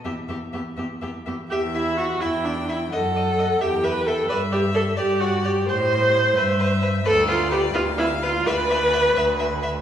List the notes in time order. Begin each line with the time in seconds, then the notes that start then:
0.05 E2 B3 G4 E5
0.28 E2 B3 G4 E5
0.53 E2 B3 G4 E5
0.77 E2 B3 G4 E5
1.01 E2 B3 G4 E5
1.26 E2 B3 G4 E5
1.50 E2 G4 E5
1.74 E4 E5
1.97 F#4 E5
2.20 E2 E4 E5 G5
2.45 D4 E5
2.69 E4 E5
2.92 F#2 A4 D#5 F#5
3.16 D#5
3.39 D#5
3.61 E2 G4 E5 G5
3.84 B4 E5
4.07 A4 E5
4.29 G2 B4 D5 E5
4.52 G4 D5
4.74 A4 D5
4.96 G2 G4 D5
5.20 F#4 D5
5.44 G4 D5
5.68 A2 C5
5.91 C5
6.14 C5
6.36 G2 B4 E5
6.59 B4
6.82 B4
7.05 D2 A4 B4 D5
7.27 F4 B4
7.51 G4 B4
7.74 D2 F4 B4 F5
7.98 E4 B4
8.22 F4 B4
8.46 D2 B4 D5 E5
8.70 E5
8.93 E5
9.15 D2 B4 E5
9.39 E5
9.63 E5